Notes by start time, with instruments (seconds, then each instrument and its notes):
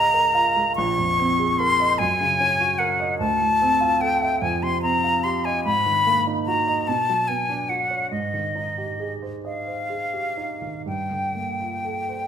Already playing: grand piano C#2 G#2 G#3 F4 G#4 A#4 D#5 F5, flute A#5
0.14 grand piano A#4
0.35 grand piano F4
0.56 grand piano G#3
0.76 grand piano A#1, flute C#6
0.98 grand piano F2
1.19 grand piano C4
1.39 grand piano G#4
1.59 grand piano A#4, flute C6
1.80 grand piano D#5
1.98 grand piano F#2, flute G#5
2.21 grand piano C#3
2.40 grand piano C#4
2.60 grand piano F#4
2.78 grand piano A#4, flute F#5
3.00 grand piano D#5
3.19 grand piano D2, flute A5
3.40 grand piano A2
3.62 grand piano C4
3.81 grand piano F4
4.01 grand piano A4, flute G5
4.22 grand piano E5
4.41 grand piano F2, flute G#5
4.63 grand piano C3, flute C6
4.82 grand piano C4, flute A#5
5.04 grand piano F4
5.24 grand piano G4, flute C6
5.45 grand piano D#5, flute G#5
5.65 grand piano G#2, flute B5
5.86 grand piano D#3
6.07 grand piano A#3
6.27 grand piano D#4
6.46 grand piano F#4, flute A#5
6.67 grand piano D#5
6.87 grand piano B2, flute A5
7.10 grand piano F#3
7.28 grand piano B3, flute G#5
7.50 grand piano D4
7.69 grand piano F#4, flute F#5
7.90 grand piano C#5
8.11 grand piano G#2, flute D#5
8.34 grand piano D#3
8.55 grand piano D#4
8.78 grand piano G4
9.00 grand piano G#4
9.22 grand piano C5
9.45 grand piano D#5, flute F5
9.67 grand piano C5
9.90 grand piano G#4
10.13 grand piano G4
10.37 grand piano D#4
10.62 grand piano D#3
10.86 grand piano G2, flute G5
11.11 grand piano D3
11.35 grand piano A#3
11.60 grand piano F4
11.85 grand piano A4
12.09 grand piano C5